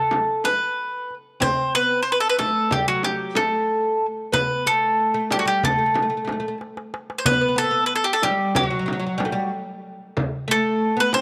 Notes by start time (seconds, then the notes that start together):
Already playing: A4
0.11 darbuka tek, frame drum
0.44 B4, darbuka tek, frame drum
1.11 darbuka ka
1.40 C4 C5, frame drum, darbuka dum
1.75 B3 B4
1.91 darbuka ka
2.03 C5, darbuka ka
2.12 B4
2.20 A4
2.30 B4
2.39 A3 A4, darbuka tek, frame drum
2.71 G3 G4, frame drum, darbuka dum
2.88 F#3 F#4
3.03 G4, darbuka tek, frame drum
3.35 A3 A4, darbuka tek, frame drum
4.02 darbuka ka
4.32 B3 B4, frame drum, darbuka dum
4.66 A3 A4
4.83 darbuka ka
4.99 darbuka ka
5.14 A3
5.31 G3 G4, darbuka tek, frame drum
5.39 F#4
5.45 G3 G4
5.63 A3 A4, darbuka dum, frame drum
5.72 A3
5.78 A3
5.86 A3
5.94 A3, darbuka tek, frame drum
6.02 A3
6.10 A3
6.17 A3
6.25 A3, frame drum
6.29 A3, darbuka tek
6.40 A3
6.48 A3
6.61 darbuka tek
6.77 darbuka ka
6.94 darbuka tek
7.10 darbuka ka
7.18 C5
7.25 B3 B4, darbuka dum, frame drum
7.33 B3
7.41 B3
7.48 B3
7.56 B3 A4
7.64 B3
7.71 B3, darbuka ka
7.86 B4
7.91 darbuka ka
7.96 A4
8.04 G4
8.13 A4
8.22 G3 G4, darbuka tek, frame drum
8.55 F#3 F#4, frame drum, darbuka dum
8.63 F#3
8.71 F#3
8.79 F#3
8.86 F#3, frame drum
8.93 F#3
9.00 F#3
9.07 F#3
9.18 G3, darbuka tek, frame drum
9.25 A3
9.32 G3
9.53 darbuka ka
10.17 frame drum, darbuka dum
10.48 A3 A4
10.66 darbuka ka
10.82 darbuka ka
10.97 B3 B4
11.13 C4 C5, darbuka tek, frame drum